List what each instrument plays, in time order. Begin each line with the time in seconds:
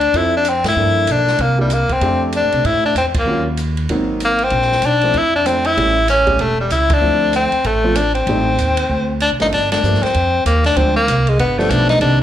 Already playing: upright bass D2, tenor saxophone D4
0.01 ride
0.13 upright bass F2, grand piano C4 E4 F4 A4, tenor saxophone E4, kick, ride
0.37 tenor saxophone D4
0.45 hi-hat pedal, ride
0.49 tenor saxophone C4
0.64 upright bass G#2, snare, ride
0.69 tenor saxophone E4
0.76 upright bass G2, grand piano F3 A#3 D4 A4
1.07 upright bass B1, hi-hat pedal, ride
1.11 tenor saxophone D4
1.27 snare
1.39 upright bass C2, tenor saxophone A#3, kick, ride
1.57 tenor saxophone G3, grand piano A#3 D4 E4 G4
1.70 tenor saxophone A#3, hi-hat pedal, ride
1.89 tenor saxophone C4, kick, ride
2.01 upright bass F2, grand piano A3 C4 D4 G4, kick, ride
2.32 tenor saxophone D4, hi-hat pedal, ride
2.43 upright bass A2
2.52 upright bass C3, ride
2.64 upright bass A2, tenor saxophone E4, kick, ride
2.85 tenor saxophone D4
2.95 upright bass E2, tenor saxophone C4, hi-hat pedal, ride
3.14 kick, ride
3.19 tenor saxophone A#3
3.25 upright bass D#2, grand piano F#3 A#3 C#4 F4
3.57 hi-hat pedal, ride
3.77 ride
3.89 upright bass G#1, grand piano F#3 A#3 C4 D#4, kick, ride
4.20 hi-hat pedal, ride
4.25 tenor saxophone A#3
4.39 ride
4.44 tenor saxophone C4
4.50 upright bass A#1, kick, ride
4.62 snare
4.72 snare
4.82 upright bass B1, hi-hat pedal, ride
4.86 tenor saxophone D4
5.01 grand piano F3 A3 C4 D4, ride
5.14 upright bass F2, tenor saxophone E4, kick, ride
5.36 tenor saxophone D4
5.46 grand piano F3 A3 C4 D4, tenor saxophone C4, hi-hat pedal, ride
5.65 tenor saxophone E4, ride
5.77 upright bass A1, grand piano G3 A3 C#4 E4, kick, ride
6.08 tenor saxophone C#4, snare, hi-hat pedal, ride
6.27 grand piano G3 A3 C#4 G4, kick, ride
6.39 upright bass E1, tenor saxophone A3, kick, ride
6.60 tenor saxophone G3
6.70 upright bass C#2, tenor saxophone E4, hi-hat pedal, ride
6.90 tenor saxophone D4, kick, ride
7.01 upright bass D2, grand piano F3 A3 C4 E4
7.33 tenor saxophone C4, hi-hat pedal, ride
7.52 muted upright bass stroke, ride
7.64 upright bass A1, tenor saxophone A3, kick, ride
7.84 grand piano F3 A3 C4 F4
7.95 tenor saxophone D4, hi-hat pedal, ride
8.15 tenor saxophone C4, ride
8.27 upright bass A1, grand piano G3 A3 C4 D#4, kick, ride
8.58 upright bass D#2, hi-hat pedal, ride
8.77 ride
8.89 upright bass D2, kick
9.20 tenor saxophone D4, hi-hat pedal, ride
9.30 upright bass C2
9.40 upright bass A1, grand piano G2 F3 A3 A#3 D4, tenor saxophone D#4, snare, ride
9.52 upright bass G1, tenor saxophone D4, kick, ride
9.72 tenor saxophone D4, snare, ride
9.83 upright bass G2, grand piano F3 G3 A3 A#3 D4, hi-hat pedal
9.94 snare
10.03 tenor saxophone C4, muted upright bass stroke, snare, ride
10.14 upright bass F2, kick, ride
10.45 upright bass D#2, tenor saxophone A#3, kick, hi-hat pedal, ride
10.64 tenor saxophone D4, snare, ride
10.76 upright bass D2, grand piano D3 F3 G#3 C4 D4, tenor saxophone C4, kick, ride
10.96 tenor saxophone A#3
11.08 upright bass C2, kick, hi-hat pedal, ride
11.27 tenor saxophone G#3, ride
11.39 upright bass G1, tenor saxophone B3, kick, ride
11.59 grand piano F3 G3 A3 B3 D4, tenor saxophone A3, snare
11.70 upright bass B1, tenor saxophone D4, kick, hi-hat pedal, ride
11.89 tenor saxophone D#4, snare, ride
12.01 upright bass C2, grand piano D#3 G3 A#3 C4 D4, tenor saxophone D4, kick, ride